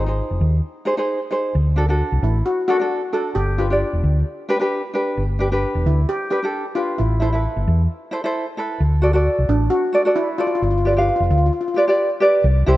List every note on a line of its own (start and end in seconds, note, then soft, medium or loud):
0.00 0.20 G#1 medium
0.00 1.28 D#4 medium
0.06 0.55 D#4 medium
0.06 0.55 G#4 medium
0.06 0.56 C5 medium
0.31 0.39 F1 medium
0.41 0.59 D#2 medium
0.85 0.93 D#4 medium
0.85 0.93 G#4 medium
0.85 0.94 C5 medium
0.97 1.18 D#4 medium
0.97 1.19 G#4 medium
0.97 1.19 C5 medium
1.31 1.54 D#4 medium
1.31 1.54 G#4 medium
1.31 1.55 C5 medium
1.55 2.01 D2 medium
1.76 1.84 D4 medium
1.76 1.84 F#4 medium
1.76 1.85 A4 medium
1.89 2.36 D4 medium
1.89 2.37 F#4 medium
1.89 2.37 A4 medium
2.12 2.21 C2 medium
2.23 2.41 A1 medium
2.23 2.47 E4 medium
2.46 2.56 F#4 medium
2.68 2.75 D4 medium
2.68 3.15 F#4 medium
2.68 2.76 F#4 medium
2.68 2.76 A4 medium
2.80 3.00 D4 medium
2.80 3.01 F#4 medium
2.80 3.01 A4 medium
3.13 3.36 D4 medium
3.13 3.36 F#4 medium
3.13 3.34 A4 medium
3.13 3.36 A4 medium
3.35 3.82 G1 medium
3.35 3.59 G4 medium
3.58 3.66 D4 medium
3.58 4.91 F4 medium
3.58 3.66 G4 medium
3.58 3.66 B4 medium
3.70 4.18 D4 medium
3.70 4.18 G4 medium
3.70 4.19 D5 medium
3.93 4.02 E1 medium
4.04 4.22 D2 medium
4.49 4.56 D4 medium
4.49 4.57 G4 medium
4.49 4.57 B4 medium
4.59 4.81 D4 medium
4.59 4.81 G4 medium
4.59 4.82 B4 medium
4.94 5.22 D4 medium
4.94 5.22 G4 medium
4.94 5.22 B4 medium
5.17 5.64 G1 medium
5.39 5.47 D4 medium
5.39 5.48 G4 medium
5.39 5.48 B4 medium
5.52 5.99 D4 medium
5.52 6.00 G4 medium
5.52 6.00 B4 medium
5.75 5.83 E1 medium
5.86 6.04 D2 medium
5.86 6.09 E4 medium
6.09 6.30 G4 medium
6.30 6.38 D4 medium
6.30 6.78 G4 medium
6.30 6.38 G4 medium
6.30 6.39 B4 medium
6.42 6.63 D4 medium
6.42 6.64 G4 medium
6.42 6.64 A4 medium
6.75 6.98 D4 medium
6.75 6.99 F4 medium
6.75 6.99 G4 medium
6.75 6.99 B4 medium
6.98 7.46 A1 medium
6.98 7.21 E4 medium
7.20 7.28 E4 medium
7.20 8.54 E4 medium
7.20 7.29 A4 medium
7.20 7.29 C5 medium
7.33 7.81 E4 medium
7.33 7.81 A4 medium
7.33 7.82 B4 medium
7.56 7.65 G1 medium
7.68 7.86 E2 loud
8.11 8.19 E4 medium
8.11 8.20 A4 medium
8.11 8.20 C5 medium
8.24 8.45 E4 medium
8.24 8.45 A4 medium
8.24 8.45 C5 medium
8.57 8.80 E4 medium
8.57 8.81 A4 medium
8.57 8.81 B4 medium
8.80 9.27 D2 medium
9.02 9.10 F#4 medium
9.02 9.10 A4 medium
9.02 9.11 D5 medium
9.13 9.62 F#4 medium
9.13 9.63 A4 medium
9.13 9.63 D5 medium
9.39 9.47 C2 medium
9.49 9.67 A1 medium
9.49 9.72 D4 medium
9.70 10.13 F#4 medium
9.93 10.01 F#4 medium
9.93 10.01 A4 medium
9.93 10.02 D5 medium
10.05 10.26 F#4 medium
10.05 10.27 A4 medium
10.05 10.27 D5 medium
10.16 10.40 E4 medium
10.38 10.46 F4 medium
10.38 10.62 F#4 medium
10.38 10.62 A4 medium
10.38 10.63 D5 medium
10.47 10.54 F4 medium
10.55 10.62 F4 medium
10.62 11.09 G1 medium
10.62 10.69 F4 soft
10.71 10.76 F4 medium
10.78 10.84 F4 medium
10.85 10.92 F4 medium
10.85 10.93 G4 medium
10.85 10.93 B4 soft
10.85 10.93 D5 medium
10.93 11.00 F4 soft
10.93 11.45 G4 medium
10.97 11.07 F4 medium
10.97 11.45 B4 medium
10.97 11.45 F5 medium
11.08 11.15 F4 soft
11.16 11.22 F4 medium
11.20 11.29 F1 medium
11.20 11.30 F4 soft
11.30 11.49 D2 medium
11.30 11.37 F4 medium
11.38 11.45 F4 soft
11.46 11.52 F4 medium
11.53 11.60 F4 soft
11.61 11.67 F4 medium
11.68 11.73 F4 soft
11.74 11.82 F4 medium
11.74 11.83 G4 medium
11.74 11.84 B4 medium
11.74 11.84 D5 medium
11.88 12.08 G4 medium
11.88 12.08 B4 medium
11.88 12.09 D5 medium
12.20 12.44 G4 medium
12.20 12.44 B4 medium
12.20 12.44 D5 medium
12.44 12.62 C2 loud
12.66 12.77 C2 medium
12.66 12.74 E4 medium
12.66 12.74 G4 medium
12.66 12.75 C5 loud